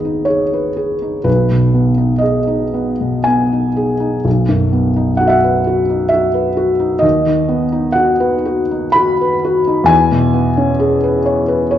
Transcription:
0.00 1.23 G#1 soft
0.00 1.29 D#2 soft
0.00 1.29 B3 soft
0.00 0.05 D#4 soft
0.00 0.28 G#4 soft
0.00 0.54 B4 soft
0.00 0.27 D#5 medium
0.05 0.43 D#4 soft
0.25 0.67 G#4 soft
0.25 1.25 C#5 medium
0.54 0.93 B4 soft
0.77 1.17 G#4 soft
1.02 1.27 D#4 soft
1.24 4.20 B1 soft
1.24 2.22 B4 medium
1.51 1.89 B2 soft
1.74 2.13 B3 soft
1.98 2.37 D#4 soft
2.18 2.63 G#4 soft
2.18 3.26 D#5 medium
2.47 2.91 D#4 soft
2.74 3.18 B3 soft
3.01 3.43 B2 soft
3.24 3.68 B3 soft
3.24 4.23 G#5 medium
3.52 3.92 D#4 soft
3.76 4.15 G#4 soft
4.00 4.25 D#4 soft
4.24 7.00 B1 soft
4.49 4.88 F#2 soft
4.73 5.12 B3 soft
4.96 5.35 D#4 soft
5.17 5.59 F#4 soft
5.17 5.26 F#5 medium
5.27 5.34 E5 medium
5.27 6.11 F#5 medium
5.44 5.81 B4 soft
5.67 6.04 F#4 soft
5.90 6.27 D#4 soft
6.09 6.49 F#4 soft
6.09 7.02 E5 medium
6.34 6.71 B4 soft
6.57 6.94 F#4 medium
6.80 7.03 D#4 soft
6.99 9.85 D#2 medium
6.99 7.94 D#5 medium
7.26 7.64 D#3 soft
7.49 7.86 B3 soft
7.72 8.10 D#4 medium
7.92 8.35 F#4 soft
7.92 8.95 F#5 medium
8.20 8.61 B4 medium
8.45 8.87 F#4 soft
8.71 9.11 D#4 soft
8.92 9.35 F#4 medium
8.92 9.88 B5 medium
9.21 9.59 B4 soft
9.45 9.81 F#4 medium
9.67 9.90 D#4 medium
9.84 11.78 E2 medium
9.84 11.78 G#5 loud
10.11 10.48 B2 medium
10.33 10.71 B3 soft
10.57 10.95 C#4 medium
10.80 11.17 G#4 medium
11.04 11.40 B4 medium
11.26 11.63 C#5 medium
11.48 11.78 B4 medium
11.71 11.78 C#5 medium

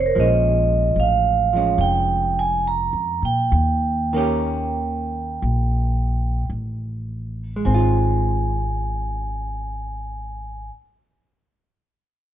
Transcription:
0.00 0.10 F1 medium
0.00 0.14 D#3 soft
0.00 0.14 A3 soft
0.00 0.04 C5 medium
0.06 0.10 A#4 soft
0.11 1.52 F3 soft
0.11 0.15 C5 soft
0.16 0.93 A#1 medium
0.16 1.54 G#3 soft
0.16 1.55 C#4 soft
0.16 1.01 D#5 medium
0.96 1.74 A1 medium
0.96 1.83 F5 medium
1.53 3.51 F3 soft
1.53 3.52 G#3 soft
1.53 3.53 C#4 soft
1.78 2.88 F1 medium
1.78 2.39 G5 medium
2.39 2.65 G#5 medium
2.68 3.21 A#5 medium
2.93 3.20 F2 soft
3.22 3.49 A#2 medium
3.22 6.45 G5 medium
3.52 5.38 D#2 medium
4.13 7.56 D#3 soft
4.13 7.64 A#3 soft
4.13 7.65 C#4 medium
4.18 7.66 G4 medium
5.42 6.44 A#1 medium
6.50 7.61 A1 medium
7.56 10.64 G#3 soft
7.65 10.69 G#1 medium
7.65 10.73 C4 soft
7.65 10.68 G#5 medium
7.74 10.82 F4 medium

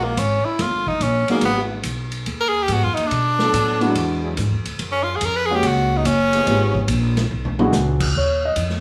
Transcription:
0.00 0.16 A#1 medium
0.00 0.15 G#3 loud
0.00 0.20 A#3 medium
0.00 0.15 C#4 medium
0.00 0.15 E4 medium
0.00 0.15 A#4 loud
0.17 0.44 G#1 loud
0.17 0.47 C#4 medium
0.17 hi-hat pedal medium
0.17 ride medium
0.45 0.63 E4 medium
0.45 muted upright bass stroke soft
0.59 1.00 G1 medium
0.59 0.89 F4 medium
0.59 snare soft
0.59 ride medium
0.87 1.04 D#4 medium
0.87 kick medium
1.00 1.27 A#1 loud
1.00 1.31 C#4 medium
1.00 hi-hat pedal soft
1.00 ride medium
1.28 1.82 F#3 loud
1.28 1.42 G#3 medium
1.28 1.42 A#3 medium
1.28 1.44 A#3 medium
1.28 1.83 B3 medium
1.28 1.42 B3 medium
1.28 1.83 D#4 medium
1.28 1.43 D#4 medium
1.28 1.43 F#4 medium
1.28 1.83 G#4 loud
1.28 muted upright bass stroke soft
1.28 ride medium
1.41 1.83 G#1 medium
1.41 ride medium
1.45 1.62 B3 medium
1.83 2.26 B1 medium
1.83 hi-hat pedal medium
1.83 ride medium
2.12 ride soft
2.26 2.68 D#2 medium
2.26 ride medium
2.40 2.50 A#4 loud
2.48 2.64 G#4 loud
2.63 2.74 G4 medium
2.68 2.86 G#2 medium
2.68 2.89 F#3 medium
2.68 2.89 B3 medium
2.68 2.89 D#4 medium
2.68 2.89 G#4 loud
2.68 hi-hat pedal medium
2.68 ride medium
2.73 2.85 F#4 loud
2.84 2.97 F#2 medium
2.84 2.96 F4 medium
2.94 3.11 D#2 medium
2.94 3.08 D#4 medium
2.94 ride medium
3.07 4.11 D4 loud
3.11 3.52 B2 medium
3.11 ride medium
3.39 3.79 F#3 loud
3.39 3.79 B3 loud
3.39 3.80 D4 loud
3.39 3.79 A4 loud
3.39 snare medium
3.53 3.94 A2 medium
3.53 hi-hat pedal medium
3.53 ride medium
3.80 3.91 F#3 loud
3.80 4.34 G#3 medium
3.80 4.34 B3 medium
3.80 4.34 D4 medium
3.80 3.91 D4 medium
3.80 4.34 E4 medium
3.80 3.91 E4 medium
3.80 4.35 F#4 medium
3.80 3.91 F#4 loud
3.80 ride soft
3.95 4.36 E2 medium
3.95 ride medium
4.23 4.33 F#3 medium
4.23 4.33 D4 medium
4.23 4.33 E4 medium
4.23 4.33 G#4 medium
4.37 4.53 G#2 loud
4.37 hi-hat pedal medium
4.37 ride medium
4.52 4.65 E2 medium
4.65 4.78 D2 medium
4.65 ride medium
4.79 5.20 F#2 loud
4.79 ride medium
4.92 5.05 C#4 medium
5.03 5.17 F4 medium
5.16 5.27 G#4 medium
5.21 5.62 F2 loud
5.21 hi-hat pedal medium
5.21 ride medium
5.25 5.37 A#4 loud
5.36 5.47 B4 loud
5.46 5.57 G#4 medium
5.50 6.03 G#3 medium
5.50 6.03 A#3 medium
5.50 6.03 C#4 medium
5.50 6.03 F#4 medium
5.50 6.03 F5 medium
5.55 5.68 G4 medium
5.63 6.04 C#2 medium
5.63 5.98 F#4 medium
5.63 ride medium
5.97 6.08 D#4 medium
6.05 6.46 F#1 loud
6.05 6.90 C#4 loud
6.05 hi-hat pedal medium
6.05 ride medium
6.32 6.86 F3 loud
6.32 6.86 B3 medium
6.32 6.86 D#4 medium
6.32 6.87 G#4 loud
6.32 ride medium
6.47 6.87 G#1 medium
6.47 6.72 G#3 medium
6.47 6.72 B3 medium
6.47 6.72 D#4 medium
6.47 6.72 F4 medium
6.47 6.72 G4 medium
6.47 ride medium
6.75 kick medium
6.88 7.29 A#1 loud
6.88 hi-hat pedal medium
6.88 ride medium
7.17 snare medium
7.17 ride medium
7.31 7.71 B1 medium
7.45 floor tom medium
7.58 8.12 E3 loud
7.58 8.12 G#3 medium
7.58 7.72 G#3 medium
7.58 7.71 B3 medium
7.58 7.72 D4 medium
7.58 8.12 D4 medium
7.58 7.72 E4 medium
7.58 8.12 F#4 loud
7.58 7.72 F#4 medium
7.58 mid tom medium
7.72 8.13 C#2 loud
7.72 snare medium
7.72 hi-hat pedal medium
8.00 kick medium
8.00 crash loud
8.15 8.55 D#2 medium
8.15 8.43 C#5 medium
8.45 8.57 D#5 medium
8.56 8.80 F2 medium
8.56 hi-hat pedal medium
8.56 ride medium
8.70 snare soft

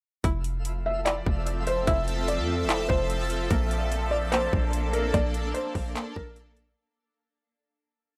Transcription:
0.24 1.22 F1 loud
0.24 3.48 F3 medium
0.24 3.48 A3 medium
0.24 3.48 C4 medium
0.24 1.04 E4 medium
0.24 3.47 F4 medium
0.24 3.48 A4 medium
0.24 3.48 E5 medium
0.24 kick loud
0.24 closed hi-hat medium
0.44 closed hi-hat medium
0.65 closed hi-hat medium
0.86 1.05 E5 medium
1.05 1.86 E4 medium
1.05 1.63 D5 medium
1.05 clap loud
1.05 closed hi-hat medium
1.26 1.85 F1 loud
1.26 kick loud
1.47 closed hi-hat medium
1.67 1.86 C5 medium
1.67 closed hi-hat medium
1.87 2.40 F1 loud
1.87 2.68 E4 medium
1.87 2.26 E5 loud
1.87 kick loud
1.87 closed hi-hat medium
2.08 closed hi-hat medium
2.28 2.86 D5 medium
2.28 closed hi-hat medium
2.38 2.65 F2 loud
2.64 2.88 F1 loud
2.69 3.51 E4 medium
2.69 clap loud
2.69 closed hi-hat medium
2.89 3.48 F1 loud
2.89 3.47 C5 medium
2.89 kick loud
3.10 closed hi-hat medium
3.30 closed hi-hat medium
3.51 4.49 A#1 loud
3.51 4.31 A#3 medium
3.51 6.74 A#3 medium
3.51 6.74 D4 medium
3.51 6.74 A4 medium
3.51 6.74 D5 medium
3.51 kick loud
3.51 closed hi-hat medium
3.71 closed hi-hat medium
3.92 closed hi-hat medium
4.11 4.31 D5 medium
4.32 5.13 A#3 medium
4.32 4.90 C5 medium
4.32 clap loud
4.32 closed hi-hat medium
4.53 5.12 A#1 loud
4.53 kick medium
4.73 closed hi-hat medium
4.93 5.13 A#4 medium
4.93 closed hi-hat medium
5.14 5.53 A#1 loud
5.14 5.94 A#3 medium
5.14 5.52 D5 medium
5.14 kick loud
5.14 closed hi-hat medium
5.34 closed hi-hat medium
5.54 6.12 C5 medium
5.54 closed hi-hat medium
5.75 5.95 A#1 loud
5.75 kick medium
5.75 open hi-hat soft
5.95 6.77 A#3 medium
5.95 clap loud
5.95 closed hi-hat medium
6.16 6.75 A#1 loud
6.16 6.35 A#4 medium
6.16 kick loud
6.36 closed hi-hat medium
6.57 closed hi-hat medium

